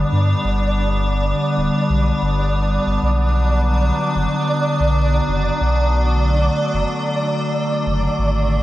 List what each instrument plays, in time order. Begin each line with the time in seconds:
Already playing: ambient pad D3 G3 B3, synth texture D5
0.12 sub bass G2
0.45 sub bass G1
1.58 sub bass D1
1.90 sub bass B1
2.22 sub bass G1
2.87 sub bass G1
3.03 sub bass B1, ambient pad D3 F#3 B3
4.16 sub bass F#1
4.80 sub bass B1
5.28 sub bass F#1
5.61 sub bass B1, ambient pad A3
6.74 sub bass F#1
7.87 sub bass F#1
8.19 sub bass G#1, ambient pad C3 G#3 A#3